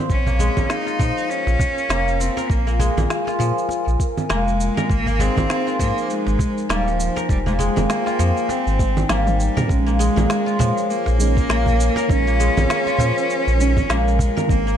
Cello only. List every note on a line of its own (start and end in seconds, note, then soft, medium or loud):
0.10 0.72 C#4 loud
0.70 1.31 D#4 loud
1.30 2.21 C#4 loud
2.20 2.51 C4 medium
2.50 3.10 A#3 medium
4.30 4.92 G#3 loud
4.90 5.22 A#3 loud
5.21 5.80 C4 loud
5.80 6.12 A#3 medium
6.10 6.67 G#3 loud
6.67 6.89 G3 loud
6.67 6.71 G#3 medium
6.87 7.29 F3 medium
7.30 7.38 G3 loud
7.47 7.54 G#3 medium
7.52 7.60 G3 medium
7.58 7.90 G#3 loud
7.89 8.51 A#3 medium
8.49 9.09 C4 medium
9.10 9.71 G3 medium
9.70 10.92 G#3 loud
10.90 12.11 A#3 loud
12.10 13.91 C#4 loud
13.90 14.49 G#3 loud
14.50 14.77 A#3 loud